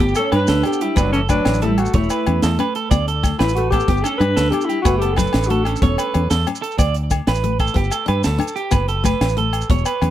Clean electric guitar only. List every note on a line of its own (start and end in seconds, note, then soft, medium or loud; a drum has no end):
0.00 0.15 G4 medium
0.17 0.31 A4 medium
0.32 0.47 B4 medium
0.49 0.79 A4 medium
0.81 0.97 G4 medium
0.97 1.12 B4 medium
1.13 1.29 A4 medium
1.30 1.60 B4 medium
1.62 1.93 A4 medium
1.95 2.10 C#5 medium
2.11 2.41 B4 medium
2.43 2.58 A4 medium
2.60 2.75 B4 medium
2.76 2.90 A4 medium
2.91 3.06 D5 medium
3.08 3.39 A4 medium
3.39 3.70 B4 medium
3.73 3.88 A4 medium
3.89 4.04 G4 medium
4.05 4.20 A4 medium
4.21 muted clean electric guitar stroke medium
4.36 4.67 A4 medium
4.69 4.84 G4 medium
4.85 5.00 B4 medium
5.02 5.17 A4 medium
5.17 5.48 B4 medium
5.51 5.81 A4 medium
5.83 5.98 C#5 medium
5.99 6.29 B4 medium
6.30 6.46 A4 medium
6.62 6.78 A4 medium
6.79 6.94 D5 medium
7.28 7.59 B4 medium
7.60 7.75 A4 medium
7.76 7.92 G4 medium
7.92 8.07 A4 medium
8.08 8.24 B4 medium
8.24 8.55 A4 medium
8.56 8.72 G4 medium
8.72 8.88 B4 medium
8.89 9.04 A4 medium
9.05 9.36 B4 medium
9.38 9.69 A4 medium
9.71 9.86 C#5 medium
9.86 10.10 B4 medium